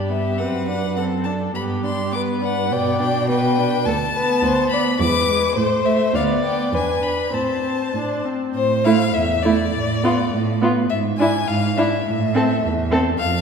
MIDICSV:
0, 0, Header, 1, 5, 480
1, 0, Start_track
1, 0, Key_signature, 1, "major"
1, 0, Tempo, 581959
1, 319, Time_signature, 2, 2, 24, 8
1, 2720, Tempo, 569801
1, 3201, Key_signature, 0, "minor"
1, 5120, Tempo, 598205
1, 8000, Tempo, 575816
1, 11064, End_track
2, 0, Start_track
2, 0, Title_t, "Violin"
2, 0, Program_c, 0, 40
2, 80, Note_on_c, 0, 76, 45
2, 317, Note_on_c, 0, 78, 47
2, 329, Note_off_c, 0, 76, 0
2, 557, Note_off_c, 0, 78, 0
2, 561, Note_on_c, 0, 78, 51
2, 786, Note_off_c, 0, 78, 0
2, 791, Note_on_c, 0, 78, 53
2, 857, Note_off_c, 0, 78, 0
2, 1023, Note_on_c, 0, 81, 53
2, 1089, Note_off_c, 0, 81, 0
2, 1279, Note_on_c, 0, 83, 60
2, 1345, Note_off_c, 0, 83, 0
2, 1524, Note_on_c, 0, 84, 63
2, 1748, Note_off_c, 0, 84, 0
2, 1753, Note_on_c, 0, 86, 70
2, 1819, Note_off_c, 0, 86, 0
2, 2002, Note_on_c, 0, 78, 57
2, 2244, Note_on_c, 0, 79, 64
2, 2256, Note_off_c, 0, 78, 0
2, 2473, Note_off_c, 0, 79, 0
2, 2478, Note_on_c, 0, 79, 68
2, 2709, Note_off_c, 0, 79, 0
2, 2714, Note_on_c, 0, 79, 83
2, 3189, Note_on_c, 0, 81, 87
2, 3201, Note_off_c, 0, 79, 0
2, 3893, Note_off_c, 0, 81, 0
2, 3898, Note_on_c, 0, 83, 75
2, 4140, Note_off_c, 0, 83, 0
2, 4148, Note_on_c, 0, 86, 91
2, 4616, Note_off_c, 0, 86, 0
2, 4621, Note_on_c, 0, 72, 79
2, 4874, Note_on_c, 0, 76, 70
2, 4887, Note_off_c, 0, 72, 0
2, 5117, Note_off_c, 0, 76, 0
2, 5122, Note_on_c, 0, 77, 74
2, 5186, Note_off_c, 0, 77, 0
2, 5350, Note_on_c, 0, 79, 68
2, 5586, Note_off_c, 0, 79, 0
2, 5604, Note_on_c, 0, 80, 69
2, 5829, Note_on_c, 0, 83, 61
2, 5841, Note_off_c, 0, 80, 0
2, 6080, Note_on_c, 0, 81, 58
2, 6092, Note_off_c, 0, 83, 0
2, 6812, Note_off_c, 0, 81, 0
2, 7048, Note_on_c, 0, 72, 81
2, 7285, Note_on_c, 0, 77, 84
2, 7297, Note_off_c, 0, 72, 0
2, 7518, Note_on_c, 0, 76, 73
2, 7530, Note_off_c, 0, 77, 0
2, 7750, Note_on_c, 0, 74, 68
2, 7762, Note_off_c, 0, 76, 0
2, 8723, Note_off_c, 0, 74, 0
2, 8966, Note_on_c, 0, 76, 72
2, 9032, Note_off_c, 0, 76, 0
2, 9203, Note_on_c, 0, 80, 79
2, 9451, Note_on_c, 0, 77, 84
2, 9463, Note_off_c, 0, 80, 0
2, 9695, Note_on_c, 0, 76, 63
2, 9707, Note_off_c, 0, 77, 0
2, 10642, Note_off_c, 0, 76, 0
2, 10879, Note_on_c, 0, 77, 88
2, 11064, Note_off_c, 0, 77, 0
2, 11064, End_track
3, 0, Start_track
3, 0, Title_t, "Violin"
3, 0, Program_c, 1, 40
3, 0, Note_on_c, 1, 67, 39
3, 327, Note_on_c, 1, 71, 47
3, 339, Note_off_c, 1, 67, 0
3, 808, Note_on_c, 1, 69, 39
3, 820, Note_off_c, 1, 71, 0
3, 1287, Note_off_c, 1, 69, 0
3, 1292, Note_on_c, 1, 67, 46
3, 1773, Note_on_c, 1, 71, 54
3, 1786, Note_off_c, 1, 67, 0
3, 2249, Note_on_c, 1, 74, 62
3, 2261, Note_off_c, 1, 71, 0
3, 2719, Note_off_c, 1, 74, 0
3, 2724, Note_on_c, 1, 71, 61
3, 3194, Note_off_c, 1, 71, 0
3, 3205, Note_on_c, 1, 69, 62
3, 3273, Note_off_c, 1, 69, 0
3, 3442, Note_on_c, 1, 71, 61
3, 3677, Note_on_c, 1, 72, 65
3, 3690, Note_off_c, 1, 71, 0
3, 3915, Note_off_c, 1, 72, 0
3, 3930, Note_on_c, 1, 74, 65
3, 3997, Note_off_c, 1, 74, 0
3, 4167, Note_on_c, 1, 71, 65
3, 4628, Note_off_c, 1, 71, 0
3, 4637, Note_on_c, 1, 72, 69
3, 5125, Note_on_c, 1, 74, 73
3, 5137, Note_off_c, 1, 72, 0
3, 5603, Note_on_c, 1, 71, 59
3, 5615, Note_off_c, 1, 74, 0
3, 6069, Note_off_c, 1, 71, 0
3, 6073, Note_on_c, 1, 72, 47
3, 6794, Note_off_c, 1, 72, 0
3, 7292, Note_on_c, 1, 64, 60
3, 7402, Note_off_c, 1, 64, 0
3, 7771, Note_on_c, 1, 64, 60
3, 7878, Note_off_c, 1, 64, 0
3, 8254, Note_on_c, 1, 65, 58
3, 8363, Note_off_c, 1, 65, 0
3, 8742, Note_on_c, 1, 65, 60
3, 8849, Note_off_c, 1, 65, 0
3, 9229, Note_on_c, 1, 64, 59
3, 9334, Note_off_c, 1, 64, 0
3, 9707, Note_on_c, 1, 64, 61
3, 9811, Note_off_c, 1, 64, 0
3, 10185, Note_on_c, 1, 69, 59
3, 10287, Note_off_c, 1, 69, 0
3, 10652, Note_on_c, 1, 69, 61
3, 10758, Note_off_c, 1, 69, 0
3, 11064, End_track
4, 0, Start_track
4, 0, Title_t, "Viola"
4, 0, Program_c, 2, 41
4, 0, Note_on_c, 2, 62, 33
4, 79, Note_on_c, 2, 59, 34
4, 92, Note_off_c, 2, 62, 0
4, 303, Note_off_c, 2, 59, 0
4, 308, Note_on_c, 2, 60, 37
4, 554, Note_on_c, 2, 62, 34
4, 566, Note_off_c, 2, 60, 0
4, 790, Note_on_c, 2, 60, 37
4, 803, Note_off_c, 2, 62, 0
4, 1032, Note_on_c, 2, 62, 36
4, 1045, Note_off_c, 2, 60, 0
4, 1270, Note_off_c, 2, 62, 0
4, 1275, Note_on_c, 2, 59, 43
4, 1511, Note_on_c, 2, 62, 41
4, 1523, Note_off_c, 2, 59, 0
4, 1748, Note_on_c, 2, 59, 41
4, 1760, Note_off_c, 2, 62, 0
4, 1995, Note_on_c, 2, 62, 44
4, 2008, Note_off_c, 2, 59, 0
4, 2224, Note_off_c, 2, 62, 0
4, 2229, Note_on_c, 2, 59, 49
4, 2470, Note_on_c, 2, 62, 48
4, 2483, Note_off_c, 2, 59, 0
4, 2710, Note_on_c, 2, 59, 47
4, 2723, Note_off_c, 2, 62, 0
4, 2955, Note_on_c, 2, 62, 47
4, 2967, Note_off_c, 2, 59, 0
4, 3198, Note_off_c, 2, 62, 0
4, 3438, Note_on_c, 2, 59, 54
4, 3905, Note_off_c, 2, 59, 0
4, 3915, Note_on_c, 2, 59, 53
4, 4148, Note_off_c, 2, 59, 0
4, 4159, Note_on_c, 2, 56, 56
4, 4390, Note_off_c, 2, 56, 0
4, 4393, Note_on_c, 2, 56, 50
4, 4625, Note_off_c, 2, 56, 0
4, 4630, Note_on_c, 2, 57, 54
4, 4862, Note_off_c, 2, 57, 0
4, 4867, Note_on_c, 2, 57, 53
4, 5111, Note_off_c, 2, 57, 0
4, 5118, Note_on_c, 2, 59, 51
4, 5348, Note_off_c, 2, 59, 0
4, 5352, Note_on_c, 2, 59, 48
4, 5582, Note_off_c, 2, 59, 0
4, 5587, Note_on_c, 2, 62, 41
4, 5821, Note_off_c, 2, 62, 0
4, 5826, Note_on_c, 2, 62, 39
4, 6063, Note_off_c, 2, 62, 0
4, 6067, Note_on_c, 2, 60, 39
4, 6299, Note_off_c, 2, 60, 0
4, 6303, Note_on_c, 2, 60, 38
4, 6504, Note_off_c, 2, 60, 0
4, 6562, Note_on_c, 2, 62, 49
4, 6807, Note_on_c, 2, 60, 40
4, 6819, Note_off_c, 2, 62, 0
4, 7051, Note_off_c, 2, 60, 0
4, 7290, Note_on_c, 2, 57, 61
4, 7401, Note_off_c, 2, 57, 0
4, 7760, Note_on_c, 2, 57, 58
4, 7872, Note_off_c, 2, 57, 0
4, 8249, Note_on_c, 2, 59, 61
4, 8361, Note_off_c, 2, 59, 0
4, 8732, Note_on_c, 2, 59, 62
4, 8844, Note_off_c, 2, 59, 0
4, 9214, Note_on_c, 2, 62, 57
4, 9326, Note_off_c, 2, 62, 0
4, 9694, Note_on_c, 2, 62, 57
4, 9804, Note_off_c, 2, 62, 0
4, 10175, Note_on_c, 2, 60, 63
4, 10282, Note_off_c, 2, 60, 0
4, 10644, Note_on_c, 2, 60, 63
4, 10754, Note_off_c, 2, 60, 0
4, 11064, End_track
5, 0, Start_track
5, 0, Title_t, "Cello"
5, 0, Program_c, 3, 42
5, 0, Note_on_c, 3, 43, 38
5, 317, Note_on_c, 3, 42, 42
5, 329, Note_off_c, 3, 43, 0
5, 1277, Note_off_c, 3, 42, 0
5, 1282, Note_on_c, 3, 43, 46
5, 2239, Note_on_c, 3, 47, 55
5, 2252, Note_off_c, 3, 43, 0
5, 3190, Note_off_c, 3, 47, 0
5, 3195, Note_on_c, 3, 38, 71
5, 3599, Note_off_c, 3, 38, 0
5, 3672, Note_on_c, 3, 38, 73
5, 4072, Note_off_c, 3, 38, 0
5, 4153, Note_on_c, 3, 40, 77
5, 4553, Note_off_c, 3, 40, 0
5, 4626, Note_on_c, 3, 45, 68
5, 5036, Note_off_c, 3, 45, 0
5, 5113, Note_on_c, 3, 38, 70
5, 5514, Note_off_c, 3, 38, 0
5, 5585, Note_on_c, 3, 40, 58
5, 5994, Note_off_c, 3, 40, 0
5, 6066, Note_on_c, 3, 45, 52
5, 6481, Note_off_c, 3, 45, 0
5, 6559, Note_on_c, 3, 45, 52
5, 6971, Note_off_c, 3, 45, 0
5, 7044, Note_on_c, 3, 45, 63
5, 7444, Note_off_c, 3, 45, 0
5, 7528, Note_on_c, 3, 40, 60
5, 7922, Note_off_c, 3, 40, 0
5, 7996, Note_on_c, 3, 45, 60
5, 8405, Note_off_c, 3, 45, 0
5, 8490, Note_on_c, 3, 45, 58
5, 8892, Note_off_c, 3, 45, 0
5, 8975, Note_on_c, 3, 44, 65
5, 9376, Note_off_c, 3, 44, 0
5, 9459, Note_on_c, 3, 44, 64
5, 9854, Note_off_c, 3, 44, 0
5, 9932, Note_on_c, 3, 45, 68
5, 10326, Note_off_c, 3, 45, 0
5, 10406, Note_on_c, 3, 40, 63
5, 10802, Note_off_c, 3, 40, 0
5, 10882, Note_on_c, 3, 41, 70
5, 11064, Note_off_c, 3, 41, 0
5, 11064, End_track
0, 0, End_of_file